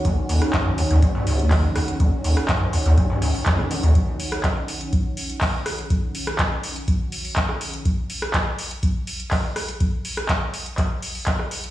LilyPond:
<<
  \new Staff \with { instrumentName = "Analog synth pad" } { \time 4/4 \key ees \minor \tempo 4 = 123 <ees des' ges'>1~ | <ees des' ges'>1~ | <ees des' ges'>1~ | <ees des' ges'>1 |
r1 | r1 | }
  \new Staff \with { instrumentName = "Acid bass" } { \clef bass \time 4/4 \key ees \minor ees,16 r16 ees,16 r16 ges,16 ges,16 ees,16 ees,16 aes,16 aes,16 des,16 ees,8 ges,16 ees,16 r16 | ees,16 r16 ees,16 r16 ges,16 ges,16 ees,16 ees,16 aes,16 aes,16 des,16 r16 f,16 ees16 ees16 ees,16 | r1 | r1 |
r1 | r1 | }
  \new DrumStaff \with { instrumentName = "Drums" } \drummode { \time 4/4 <hh bd>8 hho16 <hh ss>16 <hc hh bd>8 hho16 hh16 <hh bd>8 hho16 hh16 <hc hho bd>8 <hho ss>16 hh16 | <hh bd>8 hho16 <hh ss>16 <hc hh bd>8 hho16 hh16 <hh bd>8 hho16 hho16 <hc hh bd>16 ss16 hho16 hh16 | <hh bd>8 hho16 <hh ss>16 <hc hh bd>8 hho16 hh16 <hh bd>8 hho16 hh16 <hc hho bd>8 <hho ss>16 hh16 | <hh bd>8 hho16 <hh ss>16 <hc hh bd>8 hho16 hh16 <hh bd>8 hho16 hho16 <hc hh bd>16 ss16 hho16 hh16 |
<hh bd>8 hho16 ss16 <hc hh bd>8 hho16 hh16 <hh bd>8 hho16 hh16 <hc hho bd>8 <hho ss>16 hh16 | <hh bd>8 hho16 <hh ss>16 <hc hh bd>8 hho16 hh16 <hc hh bd>8 hho16 hho16 <hc hh bd>16 ss16 hho16 hh16 | }
>>